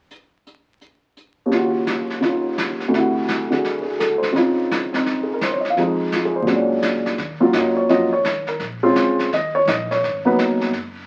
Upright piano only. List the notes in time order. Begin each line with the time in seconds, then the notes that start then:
1.46 D#2 C#3
1.53 F4
1.57 F#4
2.20 C#3 D#4 F4
2.88 D2 C3
2.96 E4
3.00 F#4
3.50 D3 F#4 G#4
3.82 G#4
4.00 A4
4.18 C5
4.32 C#3 C4 D#4
4.37 F4
4.93 C4 D#4
5.23 G#4
5.34 A#4
5.44 C5
5.52 C#5
5.61 D#5
5.70 F5
5.76 F2 F3 G#3
5.80 D#4
6.14 F4
6.25 G#4
6.36 C5
6.42 A#2 F#3
6.47 G#3 C#4
6.53 D4
7.40 F#3 A#3 C#4 F4
7.55 D#5
7.77 C#5
7.89 F#3 A#3 C#4 F4 D#5
8.13 C#5
8.48 A#4
8.83 G#3 C4 C#4 F4
9.34 D#5
9.55 C#5
9.69 D#5
9.91 C#5
10.25 F#3 A#3 B3 D#4 B4